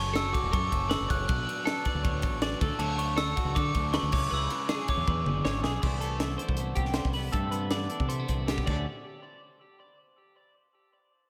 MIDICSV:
0, 0, Header, 1, 7, 480
1, 0, Start_track
1, 0, Tempo, 378549
1, 1634, Time_signature, 4, 2, 24, 8
1, 14326, End_track
2, 0, Start_track
2, 0, Title_t, "Glockenspiel"
2, 0, Program_c, 0, 9
2, 0, Note_on_c, 0, 85, 90
2, 204, Note_on_c, 0, 88, 100
2, 221, Note_off_c, 0, 85, 0
2, 423, Note_on_c, 0, 86, 94
2, 447, Note_off_c, 0, 88, 0
2, 652, Note_off_c, 0, 86, 0
2, 667, Note_on_c, 0, 85, 97
2, 1146, Note_on_c, 0, 88, 93
2, 1165, Note_off_c, 0, 85, 0
2, 1256, Note_off_c, 0, 88, 0
2, 1398, Note_on_c, 0, 90, 101
2, 1610, Note_off_c, 0, 90, 0
2, 1625, Note_on_c, 0, 90, 95
2, 2298, Note_off_c, 0, 90, 0
2, 3537, Note_on_c, 0, 81, 97
2, 3784, Note_on_c, 0, 85, 107
2, 3792, Note_off_c, 0, 81, 0
2, 4010, Note_off_c, 0, 85, 0
2, 4027, Note_on_c, 0, 88, 115
2, 4502, Note_on_c, 0, 86, 100
2, 4523, Note_off_c, 0, 88, 0
2, 4952, Note_off_c, 0, 86, 0
2, 4981, Note_on_c, 0, 85, 103
2, 5233, Note_off_c, 0, 85, 0
2, 5243, Note_on_c, 0, 86, 102
2, 5348, Note_off_c, 0, 86, 0
2, 5496, Note_on_c, 0, 88, 98
2, 5930, Note_off_c, 0, 88, 0
2, 6212, Note_on_c, 0, 86, 91
2, 7110, Note_off_c, 0, 86, 0
2, 14326, End_track
3, 0, Start_track
3, 0, Title_t, "Clean electric guitar"
3, 0, Program_c, 1, 27
3, 0, Note_on_c, 1, 73, 93
3, 171, Note_on_c, 1, 69, 90
3, 180, Note_off_c, 1, 73, 0
3, 413, Note_off_c, 1, 69, 0
3, 413, Note_on_c, 1, 66, 73
3, 658, Note_off_c, 1, 66, 0
3, 658, Note_on_c, 1, 69, 89
3, 1135, Note_on_c, 1, 71, 84
3, 1146, Note_off_c, 1, 69, 0
3, 1377, Note_off_c, 1, 71, 0
3, 1377, Note_on_c, 1, 73, 84
3, 1620, Note_off_c, 1, 73, 0
3, 1620, Note_on_c, 1, 71, 98
3, 2098, Note_on_c, 1, 69, 89
3, 2106, Note_off_c, 1, 71, 0
3, 2345, Note_off_c, 1, 69, 0
3, 2345, Note_on_c, 1, 74, 76
3, 2577, Note_off_c, 1, 74, 0
3, 2577, Note_on_c, 1, 73, 84
3, 3064, Note_off_c, 1, 73, 0
3, 3071, Note_on_c, 1, 74, 85
3, 3305, Note_off_c, 1, 74, 0
3, 3310, Note_on_c, 1, 69, 85
3, 3545, Note_off_c, 1, 69, 0
3, 3545, Note_on_c, 1, 73, 103
3, 4013, Note_on_c, 1, 69, 88
3, 4028, Note_off_c, 1, 73, 0
3, 4267, Note_off_c, 1, 69, 0
3, 4267, Note_on_c, 1, 66, 77
3, 4509, Note_off_c, 1, 66, 0
3, 4509, Note_on_c, 1, 69, 84
3, 4989, Note_off_c, 1, 69, 0
3, 4998, Note_on_c, 1, 71, 89
3, 5224, Note_off_c, 1, 71, 0
3, 5229, Note_on_c, 1, 73, 89
3, 5459, Note_off_c, 1, 73, 0
3, 5464, Note_on_c, 1, 71, 91
3, 5946, Note_off_c, 1, 71, 0
3, 5947, Note_on_c, 1, 68, 85
3, 6188, Note_off_c, 1, 68, 0
3, 6202, Note_on_c, 1, 73, 76
3, 6433, Note_off_c, 1, 73, 0
3, 6433, Note_on_c, 1, 71, 90
3, 6901, Note_off_c, 1, 71, 0
3, 6906, Note_on_c, 1, 73, 85
3, 7139, Note_off_c, 1, 73, 0
3, 7144, Note_on_c, 1, 68, 80
3, 7379, Note_off_c, 1, 68, 0
3, 7379, Note_on_c, 1, 72, 80
3, 7611, Note_off_c, 1, 72, 0
3, 7616, Note_on_c, 1, 69, 74
3, 8084, Note_off_c, 1, 69, 0
3, 8089, Note_on_c, 1, 72, 68
3, 8564, Note_on_c, 1, 67, 66
3, 8582, Note_off_c, 1, 72, 0
3, 8802, Note_on_c, 1, 72, 75
3, 8819, Note_off_c, 1, 67, 0
3, 9045, Note_off_c, 1, 72, 0
3, 9050, Note_on_c, 1, 71, 75
3, 9280, Note_off_c, 1, 71, 0
3, 9285, Note_on_c, 1, 69, 84
3, 9523, Note_off_c, 1, 69, 0
3, 9528, Note_on_c, 1, 71, 82
3, 9770, Note_off_c, 1, 71, 0
3, 9775, Note_on_c, 1, 74, 81
3, 10247, Note_off_c, 1, 74, 0
3, 10253, Note_on_c, 1, 72, 82
3, 10745, Note_off_c, 1, 72, 0
3, 10746, Note_on_c, 1, 67, 81
3, 10984, Note_on_c, 1, 74, 82
3, 10992, Note_off_c, 1, 67, 0
3, 11214, Note_off_c, 1, 74, 0
3, 14326, End_track
4, 0, Start_track
4, 0, Title_t, "Clean electric guitar"
4, 0, Program_c, 2, 27
4, 7397, Note_on_c, 2, 48, 70
4, 7417, Note_on_c, 2, 52, 58
4, 7424, Note_on_c, 2, 57, 55
4, 7434, Note_on_c, 2, 59, 55
4, 7436, Note_on_c, 2, 62, 64
4, 7642, Note_off_c, 2, 59, 0
4, 7647, Note_on_c, 2, 59, 59
4, 7866, Note_off_c, 2, 52, 0
4, 7871, Note_on_c, 2, 52, 54
4, 7874, Note_off_c, 2, 48, 0
4, 8135, Note_off_c, 2, 62, 0
4, 8140, Note_on_c, 2, 62, 53
4, 8364, Note_off_c, 2, 59, 0
4, 8369, Note_on_c, 2, 59, 60
4, 8603, Note_on_c, 2, 48, 56
4, 8839, Note_off_c, 2, 62, 0
4, 8844, Note_on_c, 2, 62, 58
4, 8967, Note_off_c, 2, 62, 0
4, 8967, Note_on_c, 2, 64, 48
4, 9065, Note_off_c, 2, 59, 0
4, 9080, Note_on_c, 2, 59, 58
4, 9287, Note_off_c, 2, 48, 0
4, 9289, Note_off_c, 2, 59, 0
4, 9302, Note_on_c, 2, 48, 75
4, 9312, Note_off_c, 2, 57, 0
4, 9318, Note_on_c, 2, 57, 65
4, 9321, Note_off_c, 2, 64, 0
4, 9555, Note_on_c, 2, 59, 63
4, 9785, Note_off_c, 2, 52, 0
4, 9789, Note_off_c, 2, 48, 0
4, 9790, Note_on_c, 2, 52, 62
4, 10032, Note_on_c, 2, 62, 56
4, 10243, Note_off_c, 2, 57, 0
4, 10253, Note_off_c, 2, 59, 0
4, 10258, Note_on_c, 2, 57, 62
4, 10392, Note_off_c, 2, 57, 0
4, 10392, Note_on_c, 2, 59, 53
4, 10518, Note_on_c, 2, 48, 60
4, 10758, Note_off_c, 2, 48, 0
4, 10765, Note_on_c, 2, 47, 65
4, 10995, Note_off_c, 2, 52, 0
4, 10996, Note_off_c, 2, 59, 0
4, 10996, Note_off_c, 2, 62, 0
4, 11001, Note_off_c, 2, 47, 0
4, 11009, Note_on_c, 2, 38, 66
4, 11025, Note_on_c, 2, 50, 68
4, 11034, Note_on_c, 2, 57, 56
4, 11038, Note_on_c, 2, 61, 60
4, 11048, Note_on_c, 2, 66, 59
4, 11220, Note_off_c, 2, 38, 0
4, 11229, Note_off_c, 2, 50, 0
4, 11230, Note_off_c, 2, 57, 0
4, 11234, Note_off_c, 2, 61, 0
4, 11239, Note_off_c, 2, 66, 0
4, 14326, End_track
5, 0, Start_track
5, 0, Title_t, "Overdriven electric guitar"
5, 0, Program_c, 3, 29
5, 0, Note_on_c, 3, 42, 92
5, 0, Note_on_c, 3, 49, 88
5, 0, Note_on_c, 3, 57, 76
5, 0, Note_on_c, 3, 61, 86
5, 12, Note_on_c, 3, 54, 62
5, 193, Note_off_c, 3, 49, 0
5, 203, Note_off_c, 3, 42, 0
5, 209, Note_on_c, 3, 49, 83
5, 216, Note_off_c, 3, 54, 0
5, 221, Note_on_c, 3, 54, 82
5, 222, Note_off_c, 3, 57, 0
5, 227, Note_on_c, 3, 57, 79
5, 228, Note_off_c, 3, 61, 0
5, 234, Note_on_c, 3, 61, 84
5, 675, Note_off_c, 3, 49, 0
5, 680, Note_on_c, 3, 42, 91
5, 689, Note_off_c, 3, 54, 0
5, 690, Note_on_c, 3, 49, 88
5, 692, Note_off_c, 3, 57, 0
5, 694, Note_on_c, 3, 54, 111
5, 697, Note_on_c, 3, 57, 98
5, 706, Note_off_c, 3, 61, 0
5, 711, Note_on_c, 3, 61, 103
5, 910, Note_off_c, 3, 61, 0
5, 915, Note_on_c, 3, 61, 77
5, 926, Note_off_c, 3, 57, 0
5, 931, Note_on_c, 3, 57, 63
5, 933, Note_off_c, 3, 54, 0
5, 938, Note_on_c, 3, 54, 57
5, 1144, Note_off_c, 3, 49, 0
5, 1157, Note_off_c, 3, 42, 0
5, 1157, Note_off_c, 3, 54, 0
5, 1159, Note_on_c, 3, 49, 74
5, 1162, Note_on_c, 3, 54, 84
5, 1169, Note_off_c, 3, 57, 0
5, 1174, Note_on_c, 3, 57, 86
5, 1178, Note_off_c, 3, 61, 0
5, 1183, Note_on_c, 3, 61, 90
5, 1393, Note_off_c, 3, 61, 0
5, 1398, Note_on_c, 3, 61, 73
5, 1409, Note_off_c, 3, 57, 0
5, 1414, Note_on_c, 3, 57, 73
5, 1425, Note_off_c, 3, 54, 0
5, 1430, Note_on_c, 3, 54, 60
5, 1622, Note_off_c, 3, 49, 0
5, 1630, Note_on_c, 3, 47, 93
5, 1631, Note_off_c, 3, 54, 0
5, 1636, Note_on_c, 3, 54, 104
5, 1645, Note_off_c, 3, 57, 0
5, 1649, Note_off_c, 3, 61, 0
5, 1650, Note_on_c, 3, 59, 100
5, 1654, Note_on_c, 3, 62, 111
5, 1860, Note_off_c, 3, 62, 0
5, 1865, Note_on_c, 3, 62, 83
5, 1868, Note_off_c, 3, 59, 0
5, 1883, Note_on_c, 3, 59, 78
5, 1892, Note_off_c, 3, 54, 0
5, 1897, Note_on_c, 3, 54, 68
5, 2098, Note_off_c, 3, 47, 0
5, 2114, Note_on_c, 3, 47, 82
5, 2116, Note_off_c, 3, 59, 0
5, 2119, Note_off_c, 3, 54, 0
5, 2125, Note_on_c, 3, 54, 87
5, 2132, Note_on_c, 3, 59, 82
5, 2143, Note_off_c, 3, 62, 0
5, 2148, Note_on_c, 3, 62, 87
5, 2582, Note_off_c, 3, 47, 0
5, 2594, Note_off_c, 3, 54, 0
5, 2597, Note_on_c, 3, 47, 95
5, 2598, Note_off_c, 3, 59, 0
5, 2609, Note_on_c, 3, 54, 103
5, 2613, Note_on_c, 3, 59, 93
5, 2615, Note_off_c, 3, 62, 0
5, 2630, Note_on_c, 3, 62, 113
5, 2814, Note_off_c, 3, 62, 0
5, 2828, Note_off_c, 3, 59, 0
5, 2830, Note_on_c, 3, 62, 73
5, 2842, Note_off_c, 3, 54, 0
5, 2843, Note_on_c, 3, 59, 70
5, 2858, Note_on_c, 3, 54, 61
5, 3054, Note_off_c, 3, 47, 0
5, 3054, Note_off_c, 3, 54, 0
5, 3067, Note_off_c, 3, 59, 0
5, 3069, Note_on_c, 3, 47, 80
5, 3069, Note_on_c, 3, 54, 88
5, 3071, Note_off_c, 3, 62, 0
5, 3082, Note_on_c, 3, 59, 92
5, 3087, Note_on_c, 3, 62, 98
5, 3296, Note_off_c, 3, 47, 0
5, 3296, Note_off_c, 3, 54, 0
5, 3302, Note_off_c, 3, 59, 0
5, 3305, Note_off_c, 3, 62, 0
5, 3318, Note_on_c, 3, 62, 105
5, 3333, Note_on_c, 3, 57, 89
5, 3334, Note_on_c, 3, 54, 80
5, 3344, Note_on_c, 3, 50, 78
5, 3515, Note_off_c, 3, 50, 0
5, 3524, Note_off_c, 3, 54, 0
5, 3530, Note_off_c, 3, 57, 0
5, 3530, Note_on_c, 3, 50, 102
5, 3539, Note_on_c, 3, 54, 105
5, 3544, Note_off_c, 3, 62, 0
5, 3545, Note_on_c, 3, 57, 93
5, 3559, Note_on_c, 3, 62, 107
5, 3757, Note_off_c, 3, 62, 0
5, 3764, Note_off_c, 3, 57, 0
5, 3772, Note_on_c, 3, 62, 89
5, 3779, Note_on_c, 3, 57, 76
5, 3782, Note_off_c, 3, 54, 0
5, 3798, Note_on_c, 3, 54, 61
5, 4003, Note_off_c, 3, 50, 0
5, 4018, Note_off_c, 3, 54, 0
5, 4018, Note_on_c, 3, 50, 82
5, 4030, Note_off_c, 3, 57, 0
5, 4031, Note_off_c, 3, 62, 0
5, 4033, Note_on_c, 3, 54, 84
5, 4045, Note_on_c, 3, 57, 87
5, 4047, Note_on_c, 3, 62, 96
5, 4495, Note_off_c, 3, 50, 0
5, 4497, Note_off_c, 3, 54, 0
5, 4504, Note_off_c, 3, 57, 0
5, 4510, Note_on_c, 3, 50, 95
5, 4512, Note_off_c, 3, 62, 0
5, 4512, Note_on_c, 3, 54, 106
5, 4520, Note_on_c, 3, 57, 105
5, 4527, Note_on_c, 3, 62, 101
5, 4739, Note_off_c, 3, 62, 0
5, 4754, Note_on_c, 3, 62, 80
5, 4757, Note_off_c, 3, 57, 0
5, 4764, Note_off_c, 3, 54, 0
5, 4772, Note_on_c, 3, 57, 70
5, 4779, Note_on_c, 3, 54, 60
5, 4969, Note_off_c, 3, 50, 0
5, 4981, Note_off_c, 3, 54, 0
5, 4984, Note_on_c, 3, 50, 82
5, 4991, Note_off_c, 3, 57, 0
5, 4996, Note_on_c, 3, 54, 79
5, 4997, Note_off_c, 3, 62, 0
5, 5007, Note_on_c, 3, 57, 93
5, 5012, Note_on_c, 3, 62, 88
5, 5212, Note_off_c, 3, 50, 0
5, 5218, Note_off_c, 3, 54, 0
5, 5224, Note_off_c, 3, 57, 0
5, 5226, Note_off_c, 3, 62, 0
5, 5234, Note_on_c, 3, 64, 96
5, 5246, Note_on_c, 3, 61, 102
5, 5251, Note_on_c, 3, 56, 84
5, 5254, Note_on_c, 3, 49, 81
5, 5460, Note_off_c, 3, 49, 0
5, 5468, Note_off_c, 3, 56, 0
5, 5475, Note_on_c, 3, 49, 93
5, 5477, Note_off_c, 3, 61, 0
5, 5484, Note_on_c, 3, 56, 93
5, 5485, Note_off_c, 3, 64, 0
5, 5492, Note_on_c, 3, 61, 103
5, 5501, Note_on_c, 3, 64, 107
5, 5697, Note_off_c, 3, 64, 0
5, 5712, Note_off_c, 3, 61, 0
5, 5712, Note_on_c, 3, 64, 82
5, 5727, Note_off_c, 3, 56, 0
5, 5728, Note_on_c, 3, 61, 70
5, 5742, Note_on_c, 3, 56, 69
5, 5944, Note_off_c, 3, 49, 0
5, 5953, Note_off_c, 3, 56, 0
5, 5955, Note_off_c, 3, 61, 0
5, 5959, Note_on_c, 3, 49, 82
5, 5965, Note_off_c, 3, 64, 0
5, 5968, Note_on_c, 3, 56, 91
5, 5970, Note_on_c, 3, 61, 79
5, 5980, Note_on_c, 3, 64, 83
5, 6420, Note_off_c, 3, 49, 0
5, 6424, Note_off_c, 3, 56, 0
5, 6425, Note_off_c, 3, 61, 0
5, 6430, Note_off_c, 3, 64, 0
5, 6434, Note_on_c, 3, 52, 98
5, 6446, Note_on_c, 3, 59, 89
5, 6455, Note_on_c, 3, 62, 106
5, 6459, Note_on_c, 3, 68, 106
5, 6661, Note_off_c, 3, 68, 0
5, 6671, Note_off_c, 3, 62, 0
5, 6677, Note_on_c, 3, 68, 77
5, 6682, Note_off_c, 3, 59, 0
5, 6686, Note_on_c, 3, 62, 73
5, 6698, Note_on_c, 3, 59, 60
5, 6879, Note_off_c, 3, 52, 0
5, 6888, Note_off_c, 3, 59, 0
5, 6894, Note_on_c, 3, 52, 85
5, 6900, Note_off_c, 3, 62, 0
5, 6903, Note_on_c, 3, 59, 86
5, 6908, Note_off_c, 3, 68, 0
5, 6915, Note_on_c, 3, 62, 89
5, 6923, Note_on_c, 3, 68, 97
5, 7141, Note_off_c, 3, 68, 0
5, 7156, Note_on_c, 3, 68, 81
5, 7157, Note_off_c, 3, 62, 0
5, 7171, Note_off_c, 3, 59, 0
5, 7172, Note_on_c, 3, 62, 70
5, 7186, Note_on_c, 3, 59, 59
5, 7368, Note_off_c, 3, 52, 0
5, 7379, Note_off_c, 3, 68, 0
5, 7387, Note_off_c, 3, 62, 0
5, 7394, Note_off_c, 3, 59, 0
5, 14326, End_track
6, 0, Start_track
6, 0, Title_t, "Fingered electric bass"
6, 0, Program_c, 4, 33
6, 0, Note_on_c, 4, 30, 91
6, 388, Note_off_c, 4, 30, 0
6, 548, Note_on_c, 4, 28, 99
6, 646, Note_off_c, 4, 28, 0
6, 674, Note_on_c, 4, 42, 106
6, 865, Note_off_c, 4, 42, 0
6, 917, Note_on_c, 4, 30, 98
6, 1203, Note_off_c, 4, 30, 0
6, 1272, Note_on_c, 4, 30, 97
6, 1368, Note_off_c, 4, 30, 0
6, 1393, Note_on_c, 4, 30, 86
6, 1585, Note_off_c, 4, 30, 0
6, 1634, Note_on_c, 4, 35, 95
6, 1826, Note_off_c, 4, 35, 0
6, 2468, Note_on_c, 4, 38, 86
6, 2833, Note_off_c, 4, 38, 0
6, 2833, Note_on_c, 4, 33, 88
6, 3215, Note_off_c, 4, 33, 0
6, 3309, Note_on_c, 4, 38, 101
6, 3406, Note_off_c, 4, 38, 0
6, 3534, Note_on_c, 4, 38, 85
6, 4211, Note_off_c, 4, 38, 0
6, 4370, Note_on_c, 4, 37, 104
6, 4474, Note_off_c, 4, 37, 0
6, 4514, Note_on_c, 4, 50, 102
6, 4704, Note_off_c, 4, 50, 0
6, 4750, Note_on_c, 4, 38, 102
6, 5037, Note_off_c, 4, 38, 0
6, 5105, Note_on_c, 4, 38, 101
6, 5203, Note_off_c, 4, 38, 0
6, 5237, Note_on_c, 4, 37, 88
6, 5426, Note_off_c, 4, 37, 0
6, 5475, Note_on_c, 4, 37, 89
6, 5664, Note_off_c, 4, 37, 0
6, 6304, Note_on_c, 4, 40, 95
6, 6402, Note_off_c, 4, 40, 0
6, 6435, Note_on_c, 4, 40, 99
6, 6624, Note_off_c, 4, 40, 0
6, 6659, Note_on_c, 4, 30, 89
6, 6880, Note_off_c, 4, 30, 0
6, 6911, Note_on_c, 4, 32, 88
6, 7127, Note_off_c, 4, 32, 0
6, 7154, Note_on_c, 4, 35, 85
6, 7368, Note_off_c, 4, 35, 0
6, 7390, Note_on_c, 4, 36, 82
6, 8062, Note_off_c, 4, 36, 0
6, 8225, Note_on_c, 4, 36, 78
6, 8516, Note_off_c, 4, 36, 0
6, 8577, Note_on_c, 4, 36, 87
6, 8871, Note_off_c, 4, 36, 0
6, 8936, Note_on_c, 4, 36, 78
6, 9231, Note_off_c, 4, 36, 0
6, 9296, Note_on_c, 4, 43, 86
6, 9975, Note_off_c, 4, 43, 0
6, 10147, Note_on_c, 4, 48, 80
6, 10438, Note_off_c, 4, 48, 0
6, 10514, Note_on_c, 4, 36, 87
6, 10899, Note_off_c, 4, 36, 0
6, 10989, Note_on_c, 4, 38, 92
6, 11217, Note_off_c, 4, 38, 0
6, 14326, End_track
7, 0, Start_track
7, 0, Title_t, "Drums"
7, 195, Note_on_c, 9, 51, 112
7, 196, Note_on_c, 9, 38, 110
7, 321, Note_off_c, 9, 51, 0
7, 323, Note_off_c, 9, 38, 0
7, 436, Note_on_c, 9, 36, 81
7, 439, Note_on_c, 9, 51, 83
7, 563, Note_off_c, 9, 36, 0
7, 566, Note_off_c, 9, 51, 0
7, 675, Note_on_c, 9, 51, 113
7, 677, Note_on_c, 9, 36, 114
7, 802, Note_off_c, 9, 51, 0
7, 803, Note_off_c, 9, 36, 0
7, 915, Note_on_c, 9, 36, 89
7, 918, Note_on_c, 9, 51, 87
7, 1042, Note_off_c, 9, 36, 0
7, 1045, Note_off_c, 9, 51, 0
7, 1150, Note_on_c, 9, 51, 108
7, 1151, Note_on_c, 9, 38, 107
7, 1277, Note_off_c, 9, 51, 0
7, 1278, Note_off_c, 9, 38, 0
7, 1396, Note_on_c, 9, 36, 86
7, 1400, Note_on_c, 9, 51, 85
7, 1522, Note_off_c, 9, 36, 0
7, 1527, Note_off_c, 9, 51, 0
7, 1632, Note_on_c, 9, 51, 120
7, 1637, Note_on_c, 9, 36, 122
7, 1759, Note_off_c, 9, 51, 0
7, 1764, Note_off_c, 9, 36, 0
7, 1889, Note_on_c, 9, 51, 76
7, 2016, Note_off_c, 9, 51, 0
7, 2117, Note_on_c, 9, 51, 102
7, 2118, Note_on_c, 9, 38, 113
7, 2243, Note_off_c, 9, 51, 0
7, 2245, Note_off_c, 9, 38, 0
7, 2347, Note_on_c, 9, 51, 72
7, 2354, Note_on_c, 9, 36, 74
7, 2473, Note_off_c, 9, 51, 0
7, 2481, Note_off_c, 9, 36, 0
7, 2593, Note_on_c, 9, 51, 106
7, 2595, Note_on_c, 9, 36, 112
7, 2720, Note_off_c, 9, 51, 0
7, 2722, Note_off_c, 9, 36, 0
7, 2817, Note_on_c, 9, 51, 83
7, 2831, Note_on_c, 9, 36, 95
7, 2944, Note_off_c, 9, 51, 0
7, 2958, Note_off_c, 9, 36, 0
7, 3065, Note_on_c, 9, 51, 100
7, 3066, Note_on_c, 9, 38, 112
7, 3192, Note_off_c, 9, 51, 0
7, 3193, Note_off_c, 9, 38, 0
7, 3313, Note_on_c, 9, 36, 115
7, 3313, Note_on_c, 9, 51, 82
7, 3439, Note_off_c, 9, 51, 0
7, 3440, Note_off_c, 9, 36, 0
7, 3543, Note_on_c, 9, 51, 115
7, 3670, Note_off_c, 9, 51, 0
7, 3790, Note_on_c, 9, 51, 84
7, 3917, Note_off_c, 9, 51, 0
7, 4026, Note_on_c, 9, 51, 116
7, 4027, Note_on_c, 9, 38, 114
7, 4153, Note_off_c, 9, 51, 0
7, 4154, Note_off_c, 9, 38, 0
7, 4273, Note_on_c, 9, 51, 81
7, 4276, Note_on_c, 9, 36, 75
7, 4400, Note_off_c, 9, 51, 0
7, 4402, Note_off_c, 9, 36, 0
7, 4516, Note_on_c, 9, 36, 116
7, 4524, Note_on_c, 9, 51, 119
7, 4643, Note_off_c, 9, 36, 0
7, 4650, Note_off_c, 9, 51, 0
7, 4749, Note_on_c, 9, 51, 87
7, 4755, Note_on_c, 9, 36, 91
7, 4876, Note_off_c, 9, 51, 0
7, 4882, Note_off_c, 9, 36, 0
7, 4990, Note_on_c, 9, 51, 104
7, 4991, Note_on_c, 9, 38, 107
7, 5117, Note_off_c, 9, 51, 0
7, 5118, Note_off_c, 9, 38, 0
7, 5225, Note_on_c, 9, 49, 112
7, 5236, Note_on_c, 9, 36, 111
7, 5352, Note_off_c, 9, 49, 0
7, 5363, Note_off_c, 9, 36, 0
7, 5710, Note_on_c, 9, 51, 81
7, 5836, Note_off_c, 9, 51, 0
7, 5945, Note_on_c, 9, 51, 113
7, 5946, Note_on_c, 9, 38, 120
7, 6072, Note_off_c, 9, 51, 0
7, 6073, Note_off_c, 9, 38, 0
7, 6187, Note_on_c, 9, 51, 77
7, 6195, Note_on_c, 9, 36, 78
7, 6314, Note_off_c, 9, 51, 0
7, 6322, Note_off_c, 9, 36, 0
7, 6436, Note_on_c, 9, 36, 119
7, 6563, Note_off_c, 9, 36, 0
7, 6673, Note_on_c, 9, 47, 76
7, 6800, Note_off_c, 9, 47, 0
7, 6913, Note_on_c, 9, 38, 94
7, 7039, Note_off_c, 9, 38, 0
7, 7149, Note_on_c, 9, 38, 100
7, 7276, Note_off_c, 9, 38, 0
7, 7388, Note_on_c, 9, 57, 107
7, 7393, Note_on_c, 9, 36, 110
7, 7514, Note_off_c, 9, 57, 0
7, 7520, Note_off_c, 9, 36, 0
7, 7625, Note_on_c, 9, 42, 66
7, 7752, Note_off_c, 9, 42, 0
7, 7861, Note_on_c, 9, 42, 91
7, 7862, Note_on_c, 9, 38, 103
7, 7988, Note_off_c, 9, 42, 0
7, 7989, Note_off_c, 9, 38, 0
7, 8106, Note_on_c, 9, 42, 69
7, 8224, Note_on_c, 9, 36, 83
7, 8233, Note_off_c, 9, 42, 0
7, 8327, Note_on_c, 9, 42, 93
7, 8351, Note_off_c, 9, 36, 0
7, 8454, Note_off_c, 9, 42, 0
7, 8566, Note_on_c, 9, 42, 71
7, 8579, Note_on_c, 9, 36, 74
7, 8688, Note_on_c, 9, 38, 33
7, 8693, Note_off_c, 9, 42, 0
7, 8706, Note_off_c, 9, 36, 0
7, 8795, Note_on_c, 9, 42, 83
7, 8797, Note_off_c, 9, 38, 0
7, 8797, Note_on_c, 9, 38, 101
7, 8922, Note_off_c, 9, 42, 0
7, 8923, Note_off_c, 9, 38, 0
7, 8938, Note_on_c, 9, 36, 85
7, 9044, Note_on_c, 9, 46, 82
7, 9065, Note_off_c, 9, 36, 0
7, 9171, Note_off_c, 9, 46, 0
7, 9290, Note_on_c, 9, 42, 91
7, 9300, Note_on_c, 9, 36, 106
7, 9417, Note_off_c, 9, 42, 0
7, 9427, Note_off_c, 9, 36, 0
7, 9536, Note_on_c, 9, 42, 64
7, 9663, Note_off_c, 9, 42, 0
7, 9771, Note_on_c, 9, 42, 80
7, 9772, Note_on_c, 9, 38, 102
7, 9897, Note_off_c, 9, 42, 0
7, 9899, Note_off_c, 9, 38, 0
7, 10013, Note_on_c, 9, 42, 63
7, 10140, Note_off_c, 9, 42, 0
7, 10143, Note_on_c, 9, 36, 88
7, 10266, Note_on_c, 9, 42, 90
7, 10270, Note_off_c, 9, 36, 0
7, 10393, Note_off_c, 9, 42, 0
7, 10505, Note_on_c, 9, 42, 64
7, 10511, Note_on_c, 9, 36, 72
7, 10632, Note_off_c, 9, 42, 0
7, 10638, Note_off_c, 9, 36, 0
7, 10755, Note_on_c, 9, 42, 83
7, 10756, Note_on_c, 9, 38, 104
7, 10878, Note_on_c, 9, 36, 84
7, 10882, Note_off_c, 9, 42, 0
7, 10883, Note_off_c, 9, 38, 0
7, 10993, Note_on_c, 9, 57, 90
7, 10999, Note_off_c, 9, 36, 0
7, 10999, Note_on_c, 9, 36, 99
7, 11119, Note_off_c, 9, 57, 0
7, 11126, Note_off_c, 9, 36, 0
7, 14326, End_track
0, 0, End_of_file